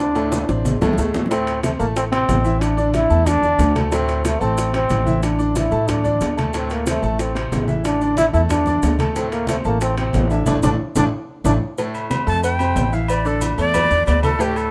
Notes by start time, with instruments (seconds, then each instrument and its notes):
Already playing: upright bass D2, grand piano D4, trombone D4
0.00 high bongo, high conga
0.15 grand piano A2 A3 A4, high bongo, high conga, high timbale, maracas
0.32 high bongo, high conga, high timbale, maracas
0.48 upright bass A1, grand piano C3 C4 D4, high bongo, high conga, maracas
0.65 high conga, low timbale, maracas
0.81 upright bass C2, grand piano A2 A3 A4, low bongo, low conga, low timbale, maracas
0.93 low bongo
0.98 upright bass D2, grand piano A2 A3 A4, low timbale, maracas
1.14 low bongo, low conga, low timbale, maracas
1.26 low bongo
1.31 grand piano A2 A3 A4, trombone C4, high bongo, high conga, high timbale, maracas
1.47 high bongo, high conga, high timbale, maracas
1.63 grand piano C3 C4 C5, trombone A3, high bongo, high conga, high timbale, maracas
1.79 upright bass A1, grand piano A3 A4 A5, trombone A#3, high conga, maracas
1.96 trombone C4, high bongo, high conga, high timbale, maracas
2.11 grand piano C3 C4 C5, trombone C4, high bongo, high conga, high timbale, maracas
2.29 upright bass A1, high bongo, low bongo, high conga, high timbale, low timbale, maracas
2.44 grand piano E3 E4 E5, high bongo, maracas
2.61 trombone D4, high bongo, high conga, high timbale, maracas
2.77 grand piano D3 D4 D5, high bongo, high conga, maracas
2.94 trombone E4, high bongo, high conga, high timbale, maracas
3.09 upright bass E2, grand piano A3 A4 A5, high conga, maracas
3.26 trombone D4, high bongo, high conga, low conga, high timbale, maracas
3.42 upright bass E2, grand piano D3 D4 D5, high bongo, high conga, maracas
3.59 upright bass D2, high bongo, low bongo, high conga, high timbale, maracas
3.75 grand piano A3 A4 A5, high bongo, high conga, high timbale, maracas
3.92 grand piano A2 A3 A4, trombone C4, high bongo, high conga, high timbale, maracas
4.08 high bongo, high timbale, maracas
4.24 grand piano C3 C4 C5, trombone A3, high bongo, high conga, high timbale, maracas
4.40 upright bass A1, grand piano A3 A4 A5, trombone C4, high conga, maracas
4.58 high bongo, high conga, high timbale, maracas
4.73 grand piano C3 C4 C5, trombone C4, high bongo, high conga, high timbale, maracas
4.90 upright bass A1, high bongo, low bongo, high conga, high timbale, maracas
5.06 grand piano E3 E4 E5, high bongo, high conga, maracas
5.23 trombone D4, high bongo, high conga, high timbale, maracas
5.38 grand piano D3 D4 D5, high bongo, high conga, maracas
5.55 trombone E4, high bongo, high conga, high timbale, maracas
5.71 upright bass A2, grand piano A3 A4 A5, high conga, maracas
5.88 trombone D4, high bongo, high conga, low conga, high timbale, maracas
6.04 grand piano D3 D4 D5, high bongo, high conga, low conga, maracas
6.21 upright bass D2, high bongo, low bongo, high conga, high timbale, low timbale, maracas
6.37 grand piano A3 A4 A5, high bongo, high conga, high timbale, maracas
6.53 grand piano A2 A3 A4, trombone C4, high bongo, high conga, high timbale, maracas
6.70 trombone A#3, high bongo, high conga, high timbale, maracas
6.86 grand piano C3 C4 C5, trombone A3, high bongo, high conga, high timbale, maracas
7.02 upright bass A1, grand piano A3 A4 A5, high conga, maracas
7.19 trombone C4, high bongo, high conga, high timbale, maracas
7.35 grand piano C3 C4 C5, high bongo, high conga, high timbale, maracas
7.52 upright bass A1, high bongo, low bongo, high conga, high timbale, low timbale, maracas
7.68 grand piano E3 E4 E5, high bongo, high conga, maracas
7.84 trombone D4, high bongo, high conga, high timbale, maracas
8.01 grand piano D3 D4 D5, high bongo, high conga, maracas
8.17 trombone E4, high bongo, high conga, high timbale, maracas
8.33 upright bass E2, grand piano A3 A4 A5, trombone E4, high conga, maracas
8.49 trombone D4, high bongo, high conga, low conga, high timbale, maracas
8.66 grand piano D3 D4 D5, high bongo, high conga, low conga, maracas
8.82 upright bass D2, high bongo, low bongo, high conga, high timbale, low timbale, maracas
8.99 grand piano A3 A4 A5, high bongo, high conga, high timbale, maracas
9.15 grand piano A2 A3 A4, trombone C4, high bongo, high conga, high timbale, maracas
9.31 trombone A#3, high bongo, high conga, high timbale, maracas
9.47 grand piano C3 C4 C5, trombone A3, high bongo, high conga, high timbale, maracas
9.64 upright bass A1, grand piano A3 A4 A5, trombone A#3, high conga, maracas
9.81 trombone C4, high bongo, high conga, high timbale, maracas
9.97 grand piano C3 C4 C5, trombone C4, high bongo, high conga, high timbale, maracas
10.13 upright bass A1, high bongo, low bongo, high conga, high timbale, low timbale, maracas
10.30 grand piano E3 E4 E5, trombone D4, high bongo, maracas
10.46 upright bass A1, grand piano A3 D4 E4, trombone D4, low bongo, high conga, high timbale, maracas
10.62 upright bass A1, grand piano A3 D4 E4, trombone D4, low bongo, high conga, high timbale, maracas
10.95 upright bass A1, grand piano A3 D4 E4, trombone D4, low bongo, high conga, high timbale, maracas
11.44 upright bass A1, grand piano A3 D4 E4, trombone D4, low bongo, high conga, high timbale, maracas
11.78 grand piano A2 A3 A4, cowbell, high conga, maracas
11.94 high conga, low agogo, maracas
12.10 grand piano C3 C4 C5, cowbell, high conga, low agogo, maracas
12.26 upright bass F2, grand piano A3 A4 A5, flute A5, high conga, maracas
12.43 flute G5, cowbell, low agogo, maracas
12.59 grand piano C3 C4 C5, high conga, low agogo, maracas
12.76 upright bass A1, cowbell, high conga, low timbale, low agogo, maracas
12.92 grand piano E3 E4 E5, flute F5, maracas
13.08 flute D5, cowbell, high conga, low agogo, maracas
13.25 grand piano D3 D4 D5, flute A4, high conga, maracas
13.41 cowbell, high conga, low agogo, maracas
13.58 upright bass E2, grand piano A3 A4 A5, flute D5, cowbell, high conga, maracas
13.74 cowbell, high conga, low conga, low agogo, maracas
13.91 upright bass E2, grand piano D3 D4 D5, high conga, low conga, maracas
14.06 upright bass D2, flute D5, cowbell, high conga, low timbale, low agogo, maracas
14.23 grand piano A3 A4 A5, flute A4, cowbell, high conga, low agogo, maracas
14.39 grand piano A2 A3 A4, flute G4, cowbell, high conga, maracas
14.56 flute A4, high conga, low agogo, maracas